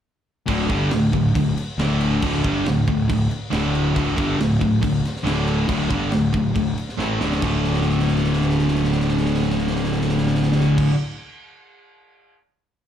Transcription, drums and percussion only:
0.48 kick, crash
0.70 kick, crash
0.91 snare, crash
1.12 kick, crash
1.35 kick, crash
1.57 crash
1.79 snare, crash
2.01 crash
2.22 kick, crash
2.44 kick, crash
2.66 snare, crash
2.88 kick, crash
3.10 kick, crash
3.31 crash
3.52 snare, crash
3.75 crash
3.96 kick, crash
4.18 kick, crash
4.40 snare, crash
4.61 kick, crash
4.83 kick, crash
5.05 snare, crash
5.16 snare
5.26 snare, crash
5.47 crash
5.69 kick, crash
5.91 kick, crash
6.12 snare, crash
6.34 kick, crash
6.56 kick, crash
6.78 crash
6.89 snare
6.99 snare
7.21 snare
7.32 snare
7.42 kick, crash
7.64 snare
7.74 snare
7.82 snare
7.90 snare
7.99 snare
8.08 snare
8.16 snare
8.24 snare
8.33 snare
8.41 snare
8.50 snare
8.59 snare
8.68 snare
8.75 snare
8.84 snare
8.92 snare
9.00 snare
9.09 snare
9.17 snare
9.26 snare
9.34 snare
9.42 snare
9.50 snare
9.59 snare
9.67 snare
9.76 snare
9.84 snare
9.92 snare
10.01 snare
10.09 snare
10.18 snare
10.27 snare
10.35 snare
10.43 snare
10.52 snare
10.61 snare
10.78 kick, crash

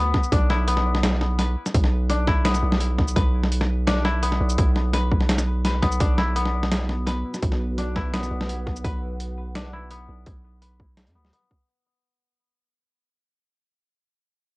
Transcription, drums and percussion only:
0.14 kick, snare
0.23 shaker
0.32 kick, snare, closed hi-hat
0.50 snare
0.68 closed hi-hat
0.77 snare
0.95 snare
1.03 snare, closed hi-hat
1.21 snare
1.39 snare, closed hi-hat
1.66 snare, shaker
1.74 kick, closed hi-hat
1.84 snare
2.09 snare, closed hi-hat
2.27 kick, snare
2.45 snare, closed hi-hat
2.54 snare, shaker
2.72 snare
2.80 closed hi-hat
2.98 kick, snare
3.08 shaker
3.16 kick, snare, closed hi-hat
3.43 snare
3.52 closed hi-hat
3.61 snare
3.87 snare, closed hi-hat
4.05 snare
4.23 closed hi-hat
4.32 snare
4.50 shaker
4.58 kick, closed hi-hat
4.76 snare
4.94 snare, closed hi-hat
5.12 kick
5.21 snare
5.29 snare, closed hi-hat
5.38 snare, shaker
5.65 snare, closed hi-hat
5.83 kick, snare, closed hi-hat
5.92 shaker
6.00 kick, snare, closed hi-hat
6.18 snare
6.36 closed hi-hat
6.46 snare
6.63 snare
6.72 snare, closed hi-hat
6.89 snare
7.07 snare, closed hi-hat
7.34 snare, shaker
7.42 kick, closed hi-hat
7.52 snare
7.78 snare, closed hi-hat
7.96 kick, snare
8.13 snare, closed hi-hat
8.23 snare, shaker
8.41 snare
8.49 closed hi-hat
8.67 kick, snare
8.76 shaker
8.85 kick, closed hi-hat
9.20 closed hi-hat
9.55 snare, closed hi-hat
9.91 closed hi-hat
10.26 kick, closed hi-hat
10.62 closed hi-hat
10.80 kick
10.97 snare, closed hi-hat
11.07 closed hi-hat
11.25 snare
11.33 closed hi-hat
11.51 kick

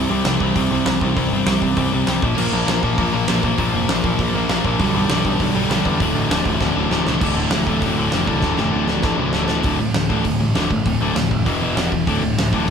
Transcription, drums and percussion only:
0.25 snare, open hi-hat
0.40 kick
0.56 kick, open hi-hat
0.86 snare, open hi-hat
1.01 kick
1.17 kick, open hi-hat
1.46 snare, open hi-hat
1.62 kick
1.77 kick, open hi-hat
2.07 snare, open hi-hat
2.22 kick
2.38 crash
2.68 snare, open hi-hat
2.83 kick
2.98 kick, open hi-hat
3.28 snare, open hi-hat
3.43 kick
3.58 kick, open hi-hat
3.89 snare, open hi-hat
4.04 kick
4.19 kick, open hi-hat
4.49 snare, open hi-hat
4.65 kick
4.80 kick, open hi-hat
5.09 snare, open hi-hat
5.25 kick
5.40 kick, open hi-hat
5.71 snare, open hi-hat
5.85 kick
6.00 kick, open hi-hat
6.31 snare, open hi-hat
6.45 kick
6.61 kick, snare
6.91 snare
7.07 snare
7.21 kick, crash
7.51 snare, open hi-hat
7.67 kick
7.82 kick, open hi-hat
8.12 snare, open hi-hat
8.27 kick
8.42 kick, snare
8.57 snare
8.88 snare
9.02 kick, snare
9.33 snare
9.48 snare
9.63 kick, open hi-hat
9.94 snare, open hi-hat
10.10 kick
10.24 kick, open hi-hat
10.55 snare, open hi-hat
10.71 kick
10.86 kick, open hi-hat
11.16 snare, open hi-hat
11.31 kick
11.46 kick, open hi-hat
11.77 snare, open hi-hat
11.92 kick
12.07 kick, open hi-hat
12.38 snare, open hi-hat
12.53 kick

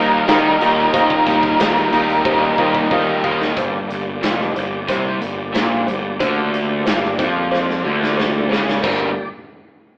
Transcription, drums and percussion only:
0.28 snare, closed hi-hat, cowbell
0.61 closed hi-hat
0.78 closed hi-hat
0.94 kick, closed hi-hat, cowbell
1.10 kick
1.27 kick, snare, closed hi-hat
1.43 kick, snare
1.60 snare, closed hi-hat, cowbell
1.76 closed hi-hat
1.92 closed hi-hat
2.09 closed hi-hat
2.25 kick, cowbell
2.58 kick, cowbell
2.75 kick
2.91 kick, cowbell
3.24 kick
3.42 snare
3.57 kick, closed hi-hat, cowbell
3.90 closed hi-hat
4.23 snare, closed hi-hat, cowbell
4.41 snare
4.56 closed hi-hat, cowbell
4.88 kick, closed hi-hat, cowbell
5.21 closed hi-hat
5.54 snare, closed hi-hat, cowbell
5.87 closed hi-hat, cowbell
6.20 kick, closed hi-hat, cowbell
6.54 closed hi-hat
6.86 snare, closed hi-hat, cowbell
7.04 snare
7.19 kick, closed hi-hat, cowbell
7.52 snare, cowbell
7.70 snare
8.03 snare
8.17 snare, cowbell
8.49 snare, cowbell
8.69 snare
8.83 kick, crash, cowbell

